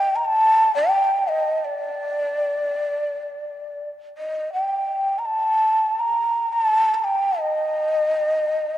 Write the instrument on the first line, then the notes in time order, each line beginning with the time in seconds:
shakuhachi
Already playing: G5
0.16 A#5
0.25 A5
0.75 G5
1.28 D#5
1.65 D5
4.18 D#5
4.53 G5
5.19 A#5
5.26 A5
6.00 A#5
6.53 A5
6.94 A5
7.04 G5
7.40 D#5